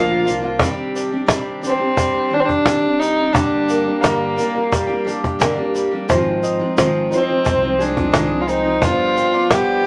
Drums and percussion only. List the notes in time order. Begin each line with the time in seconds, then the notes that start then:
0.09 cajon slap
0.27 shaker
0.43 cajon slap
0.59 cajon bass, cajon slap, shaker
0.96 shaker
1.28 cajon slap, shaker
1.63 cajon slap, shaker
1.81 cajon slap
1.97 cajon bass, cajon slap, shaker
2.15 cajon slap
2.49 cajon bass, cajon slap
2.66 cajon slap, shaker
3.02 shaker
3.35 cajon bass, cajon slap, shaker
3.69 shaker
4.04 cajon slap, shaker
4.38 cajon slap, shaker
4.55 cajon slap
4.72 cajon bass, cajon slap, shaker
4.90 cajon slap
5.08 shaker
5.24 cajon bass, cajon slap
5.40 cajon slap, shaker
5.75 shaker
6.09 cajon bass, cajon slap, shaker
6.43 shaker
6.78 cajon slap, shaker
7.12 cajon slap, shaker
7.30 cajon slap
7.45 cajon bass, cajon slap, shaker
7.63 cajon slap
7.81 shaker
7.97 cajon bass, cajon slap
8.14 cajon slap, shaker
8.48 shaker
8.82 cajon bass, cajon slap, shaker
9.17 shaker
9.51 cajon slap, shaker